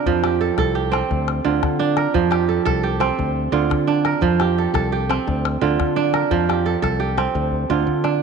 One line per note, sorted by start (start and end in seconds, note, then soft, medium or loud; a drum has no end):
0.00 0.10 D3 medium
0.00 0.63 C4 medium
0.00 1.39 D4 medium
0.00 0.88 F4 medium
0.00 0.47 A#4 medium
0.06 0.49 F2 medium
0.06 1.15 F3 medium
0.06 calabash thump medium
0.24 0.75 G4 medium
0.24 calabash click medium
0.41 0.58 A4 medium
0.58 1.02 C2 medium
0.58 1.90 A4 medium
0.58 calabash thump medium
0.58 calabash click medium
0.75 2.16 G4 medium
0.75 calabash click soft
0.92 2.72 C4 medium
0.92 calabash click medium
1.11 1.39 D2 medium
1.11 calabash thump medium
1.11 calabash click soft
1.28 calabash click medium
1.45 1.60 D2 medium
1.45 2.19 D3 medium
1.45 2.96 F4 medium
1.63 2.06 D3 medium
1.63 calabash thump medium
1.63 calabash click medium
1.79 3.47 D4 medium
1.97 2.55 A#4 medium
1.97 calabash click medium
2.14 2.58 F2 medium
2.14 3.23 F3 medium
2.14 calabash thump medium
2.31 2.83 G4 medium
2.31 calabash click medium
2.49 2.65 A4 medium
2.65 3.09 C2 loud
2.65 3.97 A4 medium
2.65 calabash thump medium
2.65 calabash click medium
2.83 4.25 G4 medium
2.83 calabash click soft
3.00 4.80 C4 medium
3.00 calabash click medium
3.19 3.47 D2 medium
3.19 calabash thump medium
3.19 calabash click soft
3.52 3.67 D2 medium
3.52 4.28 D3 medium
3.52 5.04 F4 medium
3.70 4.14 D3 medium
3.70 calabash thump medium
3.70 calabash click medium
3.87 5.55 D4 medium
4.05 4.64 A#4 medium
4.05 calabash click medium
4.13 calabash click soft
4.21 4.65 F2 medium
4.21 5.32 F3 medium
4.21 calabash thump medium
4.40 4.92 G4 medium
4.40 calabash click medium
4.58 4.74 A4 medium
4.74 5.18 C2 loud
4.74 6.06 A4 medium
4.74 calabash thump medium
4.74 calabash click medium
4.92 6.33 G4 medium
5.09 6.89 C4 medium
5.09 calabash click medium
5.27 5.56 D2 medium
5.27 calabash thump medium
5.27 calabash click soft
5.45 calabash click medium
5.61 5.76 D2 medium
5.61 6.36 D3 medium
5.61 7.13 F4 medium
5.79 6.23 D3 medium
5.79 calabash thump medium
5.79 calabash click medium
5.96 7.64 D4 medium
6.14 6.72 A#4 medium
6.14 calabash click medium
6.31 6.75 F2 medium
6.31 7.41 F3 medium
6.31 calabash thump medium
6.49 6.99 G4 medium
6.49 calabash click medium
6.66 6.82 A4 medium
6.66 calabash click soft
6.82 7.26 C2 medium
6.82 8.14 A4 medium
6.82 calabash thump medium
6.82 calabash click medium
7.00 8.23 G4 medium
7.09 calabash click soft
7.18 8.23 C4 medium
7.18 calabash click medium
7.35 7.64 D2 medium
7.35 calabash thump medium
7.35 calabash click soft
7.52 calabash thump soft
7.70 7.84 D2 medium
7.70 8.23 D3 medium
7.70 8.23 F4 medium
7.70 calabash thump soft
7.87 8.23 D3 medium
7.87 calabash thump soft
8.04 8.23 D4 medium
8.04 calabash click soft